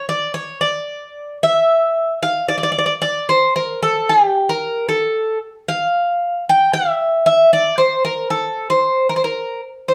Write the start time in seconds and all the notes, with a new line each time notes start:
0.09 D5
0.34 C#5
0.61 D5
1.43 E5
2.23 F5
2.48 D5
2.58 D5
2.63 D5
2.72 D5
2.79 D5
2.86 D5
3.02 D5
3.29 C5
3.56 A#4
3.83 A4
4.09 G4
4.49 A#4
4.89 A4
5.68 F5
6.49 G5
6.73 E5
7.26 E5
7.53 D5
7.78 C5
8.05 A#4
8.30 A4
8.70 C5
9.09 A#4
9.16 C5
9.24 A#4
9.88 C5